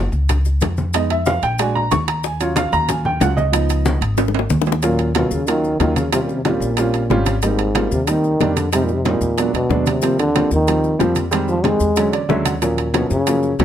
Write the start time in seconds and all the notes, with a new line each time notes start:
0.12 C#2, high conga, maracas
0.29 high bongo, high conga, low conga, high timbale, maracas
0.45 high bongo, high conga, maracas
0.61 F2, high bongo, low bongo, high conga, high timbale, low timbale, maracas
0.77 high bongo, high conga, maracas
0.93 G#3 B3 D#4 D#5, high bongo, high conga, high timbale, maracas
1.10 E5, high bongo, high conga, high timbale
1.26 F5, high bongo, high conga, maracas
1.42 A#1 G5, high conga, high timbale, maracas
1.58 G#3 D4 F#4 G#5, high bongo, high conga, high timbale, maracas
1.75 A#5, high bongo, high conga
1.91 D#2 C#6, high bongo, low bongo, high conga, high timbale, low timbale, maracas
2.08 A#5, high bongo, high conga, high timbale, maracas
2.24 G#5, high bongo, high conga, maracas
2.40 F#3 C#4 F4 C#5, high bongo, high conga, high timbale, maracas
2.56 F5, high bongo, high conga, high timbale, maracas
2.72 D#2 A#5, high conga, maracas
2.89 G#5, high bongo, high conga, low conga, high timbale, maracas
3.05 G5, high bongo, high conga, low conga
3.20 C#2 F#3 C#4 F4 F#5, high bongo, low bongo, high conga, high timbale, low timbale, maracas
3.37 D#5, high bongo, high conga, maracas
3.52 F3 B3 D#4, high bongo, high timbale, maracas
3.69 high bongo, high conga, high timbale, maracas
3.85 high bongo, high conga, maracas
4.01 G#1, high conga, high timbale, maracas
4.17 high bongo, high conga, high timbale, maracas
4.28 low bongo
4.34 high conga, high timbale
4.39 high bongo
4.50 D#2, low bongo, high conga, maracas
4.62 low bongo
4.66 high conga, low timbale, maracas
4.72 low bongo
4.82 A#2 F#3 A#3 C#4 F4, high bongo, high conga, high timbale, maracas
4.99 high conga, high timbale, maracas
5.15 B2 F#3 A#3 C#4 F4, high bongo, high conga, high timbale, maracas
5.31 D#2 C#3, high conga, maracas
5.47 D#3 F#3 A#3 C#4 F4, high bongo, high conga, high timbale, maracas
5.64 high conga, maracas
5.80 D#2 D#3 F#3 A#3 C#4 F4, high bongo, low bongo, high conga, high timbale, maracas
5.96 C#3, high conga, high timbale, maracas
6.12 C3 G3 C4 C#4 F4, high bongo, high conga, high timbale, maracas
6.23 A#2
6.29 high bongo, high conga, maracas
6.34 C3
6.44 A#2 G3 C4 C#4 F4, high bongo, high conga, high timbale, maracas
6.60 A#1, high conga, maracas
6.77 G3 C4 C#4 F4, high bongo, high conga, high timbale, maracas
6.94 high bongo, high conga, high timbale, maracas
7.10 G#1 G3 C4 C#4 F4, high bongo, low bongo, high conga, low timbale, maracas
7.26 high bongo, high conga, high timbale, maracas
7.42 G#2 G3 A#3 C4 D#4, high bongo, high conga, high timbale, maracas
7.58 high conga, high timbale, maracas
7.75 G3 A#3 C4 F4, high bongo, high conga, high timbale, maracas
7.91 D#2 C3, high conga, maracas
8.07 D#3 G3 A#3 C4 D#4, high bongo, high conga, high timbale, maracas
8.24 high conga, maracas
8.40 F2 G3 A#3 C4 D4, high bongo, low bongo, high conga, high timbale, maracas
8.56 D3, high conga, high timbale, maracas
8.72 C3 G3 G#3 C4 D#4, high bongo, high conga, high timbale, maracas
8.84 A#2
8.88 high bongo, high conga, maracas
8.95 C3
9.05 A#2 G3 G#3 C4 D#4, high bongo, high conga, high timbale, maracas
9.21 E2, high conga, maracas
9.38 F#3 G#3 B3 D4, high bongo, high conga, high timbale, maracas
9.53 E2 B2, high bongo, high conga, high timbale, maracas
9.69 D#2 F#3 G#3 B3 D4, high bongo, low bongo, high conga, maracas
9.86 C3, high bongo, high conga, high timbale, maracas
10.02 F3 G3 A#3 C4, high bongo, high conga, high timbale, maracas
10.19 D3, high conga, high timbale, maracas
10.35 F3 G3 A#3 C4, high bongo, high conga, high timbale, maracas
10.51 D#2 D#3, high conga, maracas
10.67 F3 G3 A#3 C4, high bongo, high conga, high timbale, maracas
10.84 high conga, maracas
10.99 F2 F3 G3 A#3 C4, high bongo, low bongo, high conga, high timbale, maracas
11.15 high conga, high timbale, maracas
11.31 D#3 G3 G#3 C4, high bongo, high conga, high timbale, maracas
11.48 F3, high bongo, high conga, maracas
11.64 D#3 G3 G#3 C4, high bongo, high conga, high timbale, maracas
11.80 E2, high conga, maracas
11.96 D3 F#3 G#3 C#4, high bongo, high conga, high timbale, maracas
12.13 D5, high bongo, high conga, high timbale, maracas
12.29 D#2 D3 F#3 G#3 C#4 E5, high bongo, low bongo, high conga, maracas
12.45 F#5, high bongo, high conga, high timbale, maracas
12.62 A#2 F3 F#3 A#3 C#4, high bongo, high conga, high timbale, maracas
12.78 high conga, high timbale, maracas
12.94 B2 F3 F#3 A#3 C#4, high bongo, high conga, high timbale, maracas
13.10 F#2 C#3, high conga, maracas
13.27 F3 F#3 A#3 C#4, high bongo, high conga, high timbale, maracas
13.43 high conga, maracas
13.59 D#2 F3 F#3 A#3 C#4, high bongo, low bongo, high conga, high timbale, maracas